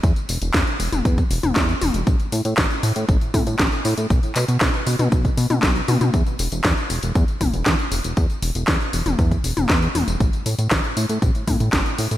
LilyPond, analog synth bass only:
\new Staff \with { instrumentName = "Analog synth bass" } { \clef bass \time 4/4 \key a \dorian \tempo 4 = 118 e,16 r16 e,,16 e,,16 e,16 r16 e,,16 e,,16 e,16 r16 e,,16 e,,16 e,16 r16 e,,16 e,,16 | a,,16 r16 a,16 a,16 a,,16 r16 a,16 a,16 a,,16 r16 a,16 a,16 a,,16 r16 a,16 a,16 | b,,16 r16 b,16 b,16 b,,16 r16 b,16 b,16 b,,16 r16 b,16 b,16 b,,16 r16 b,16 b,16 | e,16 r16 e,,16 e,,16 e,16 r16 e,,16 e,,16 e,16 r16 e,,16 e,,16 e,16 r16 e,,16 e,,16 |
e,16 r16 e,,16 e,,16 e,16 r16 e,,16 e,,16 e,16 r16 e,,16 e,,16 e,16 r16 e,,16 e,,16 | a,,16 r16 a,16 a,16 a,,16 r16 a,16 a,16 a,,16 r16 a,16 a,16 a,,16 r16 a,16 a,16 | }